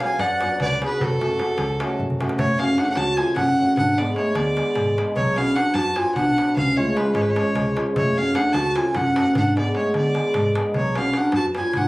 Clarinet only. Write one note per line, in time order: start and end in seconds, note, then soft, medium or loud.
0.01 0.22 F5 medium
0.21 0.60 D5 medium
0.62 0.81 B4 medium
0.83 1.04 G#4 medium
1.02 2.00 F#4 medium
2.38 2.60 A3 medium
2.59 2.80 C#4 medium
2.79 2.82 D4 medium
2.83 2.86 D4 medium
2.87 2.97 D4 medium
2.96 3.19 F#4 medium
3.18 3.36 F4 medium
3.36 3.75 C#4 medium
3.79 4.01 D4 medium
3.99 4.17 B3 medium
4.17 4.38 A3 medium
4.37 4.99 B3 medium
5.17 5.39 F#3 medium
5.37 5.58 C#4 medium
5.56 5.79 D4 medium
5.77 5.99 F#4 medium
5.97 6.16 F4 medium
6.17 6.55 D4 medium
6.58 6.80 C#4 medium
6.79 6.98 A3 medium
6.96 7.14 G#3 medium
7.15 7.24 G#3 medium
7.24 7.31 G#3 medium
7.31 7.78 G#3 medium
7.99 8.19 A3 medium
8.18 8.38 C#4 medium
8.37 8.57 D4 medium
8.56 8.79 F#4 medium
8.77 8.98 F4 medium
8.97 9.36 C#4 medium
9.37 9.55 D4 medium
9.59 9.75 B3 medium
9.79 9.94 A3 medium
9.97 10.54 B3 medium
10.77 11.00 F#3 medium
10.99 11.19 C#4 medium
11.18 11.35 D4 medium
11.37 11.46 F#4 medium
11.60 11.80 F4 medium
11.78 11.88 D4 medium